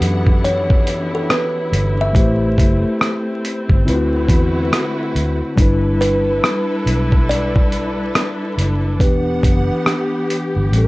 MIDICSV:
0, 0, Header, 1, 6, 480
1, 0, Start_track
1, 0, Tempo, 857143
1, 1203, Time_signature, 4, 2, 24, 8
1, 6091, End_track
2, 0, Start_track
2, 0, Title_t, "Kalimba"
2, 0, Program_c, 0, 108
2, 0, Note_on_c, 0, 71, 89
2, 225, Note_off_c, 0, 71, 0
2, 249, Note_on_c, 0, 73, 93
2, 614, Note_off_c, 0, 73, 0
2, 643, Note_on_c, 0, 69, 83
2, 722, Note_off_c, 0, 69, 0
2, 731, Note_on_c, 0, 71, 86
2, 1126, Note_on_c, 0, 76, 96
2, 1130, Note_off_c, 0, 71, 0
2, 2867, Note_off_c, 0, 76, 0
2, 3365, Note_on_c, 0, 71, 103
2, 4085, Note_on_c, 0, 74, 106
2, 4106, Note_off_c, 0, 71, 0
2, 5044, Note_on_c, 0, 71, 89
2, 5073, Note_off_c, 0, 74, 0
2, 5501, Note_off_c, 0, 71, 0
2, 5525, Note_on_c, 0, 67, 68
2, 6091, Note_off_c, 0, 67, 0
2, 6091, End_track
3, 0, Start_track
3, 0, Title_t, "Tine electric piano"
3, 0, Program_c, 1, 4
3, 0, Control_c, 1, 64, 127
3, 0, Note_on_c, 1, 52, 72
3, 0, Note_on_c, 1, 61, 44
3, 0, Note_on_c, 1, 62, 69
3, 0, Note_on_c, 1, 66, 66
3, 0, Note_on_c, 1, 67, 83
3, 0, Note_on_c, 1, 69, 55
3, 1166, Note_off_c, 1, 52, 0
3, 1171, Note_off_c, 1, 62, 0
3, 1177, Note_off_c, 1, 66, 0
3, 1183, Note_off_c, 1, 67, 0
3, 1192, Note_on_c, 1, 57, 61
3, 1201, Note_on_c, 1, 64, 56
3, 1212, Note_off_c, 1, 61, 0
3, 1212, Control_c, 1, 64, 0
3, 1213, Note_on_c, 1, 67, 64
3, 1217, Note_off_c, 1, 69, 0
3, 1222, Note_on_c, 1, 72, 68
3, 1323, Control_c, 1, 64, 127
3, 2138, Note_off_c, 1, 57, 0
3, 2143, Note_off_c, 1, 64, 0
3, 2147, Note_on_c, 1, 50, 73
3, 2149, Note_off_c, 1, 67, 0
3, 2154, Note_off_c, 1, 72, 0
3, 2155, Note_on_c, 1, 60, 68
3, 2163, Note_on_c, 1, 64, 71
3, 2170, Control_c, 1, 64, 0
3, 2172, Note_on_c, 1, 65, 55
3, 2180, Note_on_c, 1, 71, 83
3, 2207, Note_on_c, 1, 66, 73
3, 2213, Note_off_c, 1, 65, 0
3, 2275, Control_c, 1, 64, 127
3, 3096, Note_off_c, 1, 50, 0
3, 3100, Note_off_c, 1, 60, 0
3, 3104, Note_off_c, 1, 64, 0
3, 3113, Note_off_c, 1, 71, 0
3, 3114, Note_on_c, 1, 55, 77
3, 3125, Note_on_c, 1, 62, 71
3, 3126, Note_off_c, 1, 66, 0
3, 3131, Control_c, 1, 64, 0
3, 3135, Note_on_c, 1, 64, 64
3, 3147, Note_on_c, 1, 71, 84
3, 3237, Control_c, 1, 64, 127
3, 5016, Note_off_c, 1, 55, 0
3, 5022, Note_off_c, 1, 62, 0
3, 5027, Note_off_c, 1, 64, 0
3, 5028, Note_on_c, 1, 52, 68
3, 5033, Note_off_c, 1, 71, 0
3, 5037, Note_on_c, 1, 59, 59
3, 5049, Note_on_c, 1, 62, 56
3, 5051, Control_c, 1, 64, 0
3, 5060, Note_on_c, 1, 67, 73
3, 5137, Control_c, 1, 64, 127
3, 5976, Note_off_c, 1, 52, 0
3, 5981, Note_off_c, 1, 59, 0
3, 5987, Note_off_c, 1, 62, 0
3, 5993, Note_off_c, 1, 67, 0
3, 6000, Note_on_c, 1, 45, 69
3, 6010, Control_c, 1, 64, 0
3, 6011, Note_on_c, 1, 55, 54
3, 6022, Note_on_c, 1, 61, 58
3, 6034, Note_on_c, 1, 69, 55
3, 6064, Note_off_c, 1, 69, 0
3, 6071, Note_on_c, 1, 70, 72
3, 6091, Note_off_c, 1, 45, 0
3, 6091, Note_off_c, 1, 55, 0
3, 6091, Note_off_c, 1, 61, 0
3, 6091, Note_off_c, 1, 70, 0
3, 6091, End_track
4, 0, Start_track
4, 0, Title_t, "String section"
4, 0, Program_c, 2, 48
4, 0, Note_on_c, 2, 52, 76
4, 0, Note_on_c, 2, 59, 71
4, 0, Note_on_c, 2, 62, 68
4, 0, Note_on_c, 2, 64, 77
4, 0, Note_on_c, 2, 78, 69
4, 1180, Note_off_c, 2, 59, 0
4, 1181, Note_off_c, 2, 62, 0
4, 1182, Note_off_c, 2, 52, 0
4, 1182, Note_off_c, 2, 78, 0
4, 1200, Note_on_c, 2, 60, 67
4, 1202, Note_on_c, 2, 57, 75
4, 2138, Note_off_c, 2, 64, 0
4, 2153, Note_off_c, 2, 57, 0
4, 2165, Note_on_c, 2, 57, 73
4, 2165, Note_on_c, 2, 71, 70
4, 2166, Note_on_c, 2, 50, 74
4, 2166, Note_on_c, 2, 64, 71
4, 2166, Note_on_c, 2, 66, 90
4, 3103, Note_off_c, 2, 60, 0
4, 3111, Note_off_c, 2, 64, 0
4, 3113, Note_off_c, 2, 71, 0
4, 3115, Note_off_c, 2, 50, 0
4, 3115, Note_off_c, 2, 57, 0
4, 3115, Note_off_c, 2, 66, 0
4, 3116, Note_on_c, 2, 69, 69
4, 3118, Note_on_c, 2, 62, 69
4, 3118, Note_on_c, 2, 64, 70
4, 3119, Note_on_c, 2, 55, 71
4, 3120, Note_on_c, 2, 71, 79
4, 5021, Note_off_c, 2, 64, 0
4, 5021, Note_off_c, 2, 69, 0
4, 5022, Note_off_c, 2, 55, 0
4, 5022, Note_off_c, 2, 71, 0
4, 5038, Note_on_c, 2, 52, 75
4, 5039, Note_on_c, 2, 59, 73
4, 5039, Note_on_c, 2, 78, 72
4, 5041, Note_on_c, 2, 67, 83
4, 5978, Note_off_c, 2, 62, 0
4, 5991, Note_off_c, 2, 52, 0
4, 5991, Note_off_c, 2, 78, 0
4, 5992, Note_off_c, 2, 59, 0
4, 5997, Note_on_c, 2, 57, 80
4, 5999, Note_on_c, 2, 61, 72
4, 6091, Note_off_c, 2, 57, 0
4, 6091, Note_off_c, 2, 61, 0
4, 6091, Note_off_c, 2, 67, 0
4, 6091, End_track
5, 0, Start_track
5, 0, Title_t, "Fingered electric bass"
5, 0, Program_c, 3, 33
5, 6, Note_on_c, 3, 42, 89
5, 702, Note_off_c, 3, 42, 0
5, 965, Note_on_c, 3, 31, 83
5, 1191, Note_off_c, 3, 31, 0
5, 1204, Note_on_c, 3, 33, 104
5, 1430, Note_off_c, 3, 33, 0
5, 1446, Note_on_c, 3, 30, 89
5, 1587, Note_off_c, 3, 30, 0
5, 2070, Note_on_c, 3, 31, 94
5, 2165, Note_on_c, 3, 38, 109
5, 2174, Note_off_c, 3, 31, 0
5, 2391, Note_off_c, 3, 38, 0
5, 2401, Note_on_c, 3, 40, 86
5, 2629, Note_off_c, 3, 40, 0
5, 2885, Note_on_c, 3, 38, 80
5, 3026, Note_off_c, 3, 38, 0
5, 3125, Note_on_c, 3, 31, 99
5, 3582, Note_off_c, 3, 31, 0
5, 3842, Note_on_c, 3, 35, 90
5, 4540, Note_off_c, 3, 35, 0
5, 4802, Note_on_c, 3, 30, 76
5, 5041, Note_off_c, 3, 30, 0
5, 5041, Note_on_c, 3, 28, 98
5, 5269, Note_off_c, 3, 28, 0
5, 5284, Note_on_c, 3, 30, 80
5, 5426, Note_off_c, 3, 30, 0
5, 5915, Note_on_c, 3, 31, 88
5, 5999, Note_off_c, 3, 31, 0
5, 6005, Note_on_c, 3, 33, 109
5, 6091, Note_off_c, 3, 33, 0
5, 6091, End_track
6, 0, Start_track
6, 0, Title_t, "Drums"
6, 11, Note_on_c, 9, 42, 67
6, 67, Note_off_c, 9, 42, 0
6, 149, Note_on_c, 9, 36, 81
6, 205, Note_off_c, 9, 36, 0
6, 251, Note_on_c, 9, 42, 71
6, 307, Note_off_c, 9, 42, 0
6, 392, Note_on_c, 9, 36, 100
6, 448, Note_off_c, 9, 36, 0
6, 487, Note_on_c, 9, 42, 64
6, 543, Note_off_c, 9, 42, 0
6, 729, Note_on_c, 9, 37, 99
6, 730, Note_on_c, 9, 42, 76
6, 785, Note_off_c, 9, 37, 0
6, 786, Note_off_c, 9, 42, 0
6, 971, Note_on_c, 9, 42, 63
6, 1027, Note_off_c, 9, 42, 0
6, 1203, Note_on_c, 9, 36, 104
6, 1208, Note_on_c, 9, 42, 81
6, 1259, Note_off_c, 9, 36, 0
6, 1264, Note_off_c, 9, 42, 0
6, 1444, Note_on_c, 9, 36, 88
6, 1453, Note_on_c, 9, 42, 61
6, 1500, Note_off_c, 9, 36, 0
6, 1509, Note_off_c, 9, 42, 0
6, 1686, Note_on_c, 9, 37, 101
6, 1696, Note_on_c, 9, 42, 75
6, 1742, Note_off_c, 9, 37, 0
6, 1752, Note_off_c, 9, 42, 0
6, 1931, Note_on_c, 9, 42, 59
6, 1987, Note_off_c, 9, 42, 0
6, 2069, Note_on_c, 9, 36, 80
6, 2125, Note_off_c, 9, 36, 0
6, 2173, Note_on_c, 9, 42, 72
6, 2229, Note_off_c, 9, 42, 0
6, 2399, Note_on_c, 9, 36, 86
6, 2404, Note_on_c, 9, 42, 66
6, 2455, Note_off_c, 9, 36, 0
6, 2460, Note_off_c, 9, 42, 0
6, 2648, Note_on_c, 9, 37, 95
6, 2649, Note_on_c, 9, 42, 81
6, 2704, Note_off_c, 9, 37, 0
6, 2705, Note_off_c, 9, 42, 0
6, 2890, Note_on_c, 9, 42, 65
6, 2946, Note_off_c, 9, 42, 0
6, 3122, Note_on_c, 9, 36, 107
6, 3126, Note_on_c, 9, 42, 82
6, 3178, Note_off_c, 9, 36, 0
6, 3182, Note_off_c, 9, 42, 0
6, 3370, Note_on_c, 9, 42, 64
6, 3426, Note_off_c, 9, 42, 0
6, 3605, Note_on_c, 9, 37, 104
6, 3614, Note_on_c, 9, 42, 73
6, 3661, Note_off_c, 9, 37, 0
6, 3670, Note_off_c, 9, 42, 0
6, 3849, Note_on_c, 9, 42, 60
6, 3905, Note_off_c, 9, 42, 0
6, 3988, Note_on_c, 9, 36, 85
6, 4044, Note_off_c, 9, 36, 0
6, 4092, Note_on_c, 9, 42, 68
6, 4148, Note_off_c, 9, 42, 0
6, 4232, Note_on_c, 9, 36, 90
6, 4288, Note_off_c, 9, 36, 0
6, 4324, Note_on_c, 9, 42, 62
6, 4380, Note_off_c, 9, 42, 0
6, 4565, Note_on_c, 9, 37, 103
6, 4566, Note_on_c, 9, 42, 79
6, 4621, Note_off_c, 9, 37, 0
6, 4622, Note_off_c, 9, 42, 0
6, 4808, Note_on_c, 9, 42, 63
6, 4864, Note_off_c, 9, 42, 0
6, 5041, Note_on_c, 9, 36, 110
6, 5045, Note_on_c, 9, 42, 86
6, 5097, Note_off_c, 9, 36, 0
6, 5101, Note_off_c, 9, 42, 0
6, 5282, Note_on_c, 9, 36, 89
6, 5288, Note_on_c, 9, 42, 68
6, 5338, Note_off_c, 9, 36, 0
6, 5344, Note_off_c, 9, 42, 0
6, 5522, Note_on_c, 9, 37, 94
6, 5532, Note_on_c, 9, 42, 71
6, 5578, Note_off_c, 9, 37, 0
6, 5588, Note_off_c, 9, 42, 0
6, 5770, Note_on_c, 9, 42, 66
6, 5826, Note_off_c, 9, 42, 0
6, 6011, Note_on_c, 9, 42, 67
6, 6067, Note_off_c, 9, 42, 0
6, 6091, End_track
0, 0, End_of_file